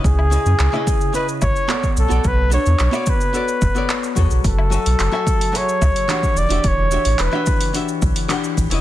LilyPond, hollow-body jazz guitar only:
\new Staff \with { instrumentName = "Hollow-body jazz guitar" } { \time 4/4 \key b \minor \tempo 4 = 109 <cis cis' e' b' dis''>8 <cis cis' e' b' dis''>8. <cis cis' e' b' dis''>8. <cis cis' e' b' dis''>4 <b fis' a' cis'' d''>8. <b fis' a' cis'' d''>16~ | <b fis' a' cis'' d''>8 <b d' fis' a' cis''>8. <b fis' a' cis'' d''>8. <b fis' a' cis'' d''>8. <b fis' a' cis'' d''>8. <fis fis' gis' a' cis''>8~ | <fis fis' gis' a' cis''>8 <fis fis' a' e'' gis''>8. <fis fis' a' e'' gis''>8. <fis fis' gis' a' e''>4 <e d' fis' g' fis''>8. <e d' fis' g' e''>16~ | <e d' fis' g' e''>8 <e d' fis' g' e''>8. <e d' fis' g' e''>8. <e d' fis' g' e''>4 <e d' fis' g' fis''>8. <cis cis' e' b' dis''>16 | }